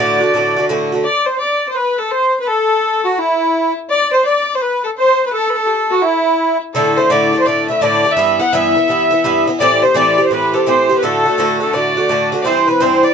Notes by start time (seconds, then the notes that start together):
Already playing: A2 D5
0.00 D3 A3 F#4
0.20 D3 A3 F#4
0.34 A2 D3 A3 F#4
0.56 D3 A3 F#4
0.69 A2 D3 A3 F#4
0.92 D3 A3 F#4
1.04 D5
1.26 C5
1.39 D5
1.69 C5
1.75 B4
1.98 A4
2.11 C5
2.40 B4
2.47 A4
3.05 F#4
3.18 E4
3.90 D5
4.12 C5
4.25 D5
4.55 C5
4.62 B4
4.84 A4
4.97 C5
5.26 B4
5.33 A4
5.50 B4
5.56 A4
5.66 G4 A4
5.91 F#4
6.03 E4
6.74 A2 D3 A3 E4 A4
6.97 D3 A3 E4 C5
7.10 A2 D3 A3 E4 D5
7.33 D3 A3 E4
7.39 C5
7.46 A2 D3 A3 E4 D5
7.68 D3 A3 E4 E5
7.77 E5
7.81 A2 D3 A3 E4 D5
8.04 D3 A3 E4
8.11 E5
8.17 G2 E3 B3 E4
8.39 E3 B3 E4 F#5
8.53 G2 E3 B3 E4 E5
8.75 E3 B3 E4
8.88 G2 E3 B3 E4
9.11 E3 B3 E4
9.24 G2 E3 B3 E4
9.47 E3 B3 E4
9.60 A2 E3 C4 G4 D5
9.82 E3 C4 G4 C5
9.95 A2 E3 C4 G4 D5
10.18 E3 C4 G4
10.25 C5
10.31 A2 E3 C4 G4 B4
10.54 E3 C4 G4 A4
10.66 A2 E3 C4 G4 C5
10.89 E3 C4 G4
10.96 B4
11.03 A2 D3 A3 F#4 A4
11.25 D3 A3 F#4
11.38 A2 D3 A3 F#4
11.60 D3 A3 F#4 A4
11.73 A2 D3 A3 F#4 D5
11.97 D3 A3 F#4
12.09 A2 D3 A3 F#4
12.32 D3 A3 F#4
12.42 G2 E3 C5 D5
12.47 C4 E4
12.67 E3 C4 E4 B4
12.80 G2 E3 C4 E4 C5
13.03 E3 C4 E4 D5